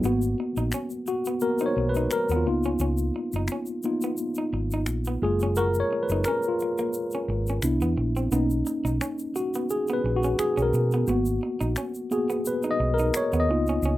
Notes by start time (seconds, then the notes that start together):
0.03 G#1 A#3 B3 F#4, shaker
0.22 shaker
0.40 muted clean electric guitar stroke
0.56 A#1 D#4, shaker
0.72 C#4, finger snap, shaker
0.90 shaker
1.07 F#4, muted clean electric guitar stroke, shaker
1.25 B3, shaker
1.40 A#3 B3 F#4 A#4, shaker
1.58 D#4 C5, shaker
1.66 C#5
1.77 B1, muted clean electric guitar stroke
1.89 B4
1.95 D#4, shaker
2.11 A#4, finger snap, shaker
2.29 D#2 B3, shaker
2.36 F4
2.46 C#2 A#3 B3 D#4 F4, muted clean electric guitar stroke
2.63 C#4, shaker
2.79 C#2 C#4, shaker
2.97 shaker
3.16 muted clean electric guitar stroke
3.33 F#1 D#4, shaker
3.48 finger snap, shaker
3.52 C#4
3.66 shaker
3.83 A#3 B3 D#4 F4, muted clean electric guitar stroke, shaker
4.01 B3, shaker
4.17 shaker
4.35 D#4, shaker
4.53 G#1, muted clean electric guitar stroke
4.71 D#4, shaker
4.86 A#1, finger snap, shaker
5.05 B3, shaker
5.22 F#1 G#3 A#3 F4 G#4, muted clean electric guitar stroke
5.40 C#4, shaker
5.56 F#4 A#4, shaker
5.74 shaker
5.80 C#5
5.93 muted clean electric guitar stroke
6.03 B4
6.09 F#1 D#4, shaker
6.24 C#4 A#4, finger snap, shaker
6.43 shaker
6.48 F4
6.60 muted clean electric guitar stroke, shaker
6.78 A#3, shaker
6.93 shaker
7.11 C#4, shaker
7.28 G#1, muted clean electric guitar stroke
7.47 C#4, shaker
7.62 C2 B3 D4 E4, finger snap, shaker
7.81 E2 B3, shaker
7.97 A#1, muted clean electric guitar stroke
8.16 C4, shaker
8.32 B1 A#3 B3 C#4 D#4, shaker
8.50 shaker
8.66 muted clean electric guitar stroke, shaker
8.85 B1 D#4, shaker
9.01 C#4, finger snap, shaker
9.19 shaker
9.36 F#4, muted clean electric guitar stroke, shaker
9.54 B3, shaker
9.70 G#4, shaker
9.87 B3, shaker
9.93 B4
10.04 A#1, muted clean electric guitar stroke
10.16 F#4
10.23 C#4, shaker
10.39 G#4, finger snap, muted fingered electric bass stroke, shaker
10.57 B1 C#4, shaker
10.62 A#4
10.73 B2, muted clean electric guitar stroke, shaker
10.91 B3, shaker
11.07 G#1 A#3 B3 F#4, shaker
11.25 shaker
11.43 muted clean electric guitar stroke
11.61 A#1 D#4, shaker
11.76 C#4, finger snap, shaker
11.94 shaker
12.11 A#3 B3 F#4 G#4, muted clean electric guitar stroke, shaker
12.30 B3, shaker
12.45 B4, shaker
12.63 D#4, shaker
12.71 D#5
12.80 B1, muted clean electric guitar stroke
12.94 A#4
12.98 D#4, shaker
13.14 C#5, finger snap, shaker
13.33 D#2 B3, shaker
13.40 D#5
13.48 C#2 A#3 B3 D#4 F4, muted clean electric guitar stroke
13.67 C#4, shaker
13.82 C#2 C#4, shaker